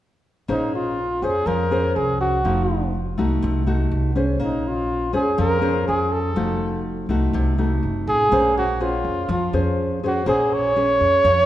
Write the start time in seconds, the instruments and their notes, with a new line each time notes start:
0.48 upright bass A#1, nylon-string guitar A#3 C#4 G#4 C5, flugelhorn D#4
0.75 flugelhorn F4
1.22 upright bass F2, nylon-string guitar C#4 G#4 C5, flugelhorn G#4
1.46 upright bass F2, nylon-string guitar F3, flugelhorn A#4
1.71 nylon-string guitar C#4 G#4 C5
1.96 upright bass C2, flugelhorn G#4
2.21 flugelhorn F#4
2.45 upright bass F1, nylon-string guitar F3 A3 D#4 F#4
3.18 upright bass C2, nylon-string guitar A3 D#4 F#4
3.42 upright bass C2, nylon-string guitar C3
3.66 nylon-string guitar A3 D#4 F#4
3.91 upright bass C2
4.15 nylon-string guitar C#4 G#4 C5
4.40 upright bass A#1, nylon-string guitar A#3
4.44 flugelhorn D#4
4.67 flugelhorn F4
5.13 upright bass F2, nylon-string guitar C#4 G#4 C5, flugelhorn G#4
5.38 upright bass F2, nylon-string guitar F3, flugelhorn A#4
5.61 nylon-string guitar C#4 G#4 C5
5.88 upright bass F2, flugelhorn G#4
6.12 flugelhorn A4
6.36 upright bass F1, nylon-string guitar F3 A3 D#4 F#4
7.09 upright bass C2, nylon-string guitar A3 D#4 F#4
7.33 upright bass C2, nylon-string guitar C3
7.58 nylon-string guitar A3 D#4 F#4
7.83 upright bass F#1
8.07 upright bass A1, flugelhorn G#4
8.32 upright bass A#1, nylon-string guitar A#3 C#4 G#4 C5
8.58 flugelhorn F#4
8.80 nylon-string guitar C#4 G#4 C5, flugelhorn F4
9.05 upright bass F2
9.29 upright bass F2, nylon-string guitar F3, flugelhorn F4
9.53 upright bass F2, nylon-string guitar C#4 G#4 C5
10.03 nylon-string guitar C#4 G#4 C5, flugelhorn F#4
10.26 upright bass A#1, nylon-string guitar A#3 C#4 G#4 C5, flugelhorn G#4
10.53 flugelhorn C#5
10.76 nylon-string guitar C#4 G#4
11.01 upright bass F2
11.24 upright bass F2, nylon-string guitar F3